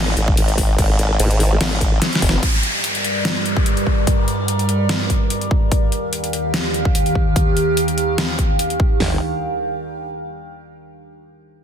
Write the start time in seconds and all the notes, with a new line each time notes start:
Already playing: G#1
0.17 G#1, closed hi-hat
0.28 kick
0.37 G#1, closed hi-hat, crash
0.48 closed hi-hat
0.58 kick, open hi-hat
0.78 G#1, kick, closed hi-hat, crash
0.99 closed hi-hat
1.20 G#1, closed hi-hat, crash
1.31 closed hi-hat
1.40 open hi-hat
1.61 G#1, snare, closed hi-hat, crash
1.81 kick, closed hi-hat
2.02 snare, closed hi-hat, crash
2.13 snare, closed hi-hat
2.22 F1, kick, open hi-hat
2.29 snare
2.43 G2 G3 A#4 D5, kick, closed hi-hat, downlifter
2.63 closed hi-hat
2.84 closed hi-hat
2.95 closed hi-hat
3.04 closed hi-hat
3.25 snare, closed hi-hat
3.46 closed hi-hat
3.57 kick
3.66 closed hi-hat
3.77 closed hi-hat
3.87 kick
4.07 kick, closed hi-hat
4.28 closed hi-hat
4.48 closed hi-hat
4.59 closed hi-hat
4.69 closed hi-hat
4.89 snare, closed hi-hat
5.10 kick, closed hi-hat
5.30 closed hi-hat
5.41 closed hi-hat
5.51 kick
5.72 D#2 D#3 G4 F5, kick, closed hi-hat
5.92 closed hi-hat
6.13 closed hi-hat
6.24 closed hi-hat
6.33 closed hi-hat
6.54 snare, closed hi-hat
6.74 closed hi-hat
6.85 kick
6.95 closed hi-hat
7.06 closed hi-hat
7.15 kick
7.36 kick, closed hi-hat
7.57 closed hi-hat
7.77 closed hi-hat
7.88 closed hi-hat
7.98 closed hi-hat
8.18 snare, closed hi-hat
8.39 kick, closed hi-hat
8.59 closed hi-hat
8.70 closed hi-hat
8.80 kick
9.00 G1, snare, floor tom, open hi-hat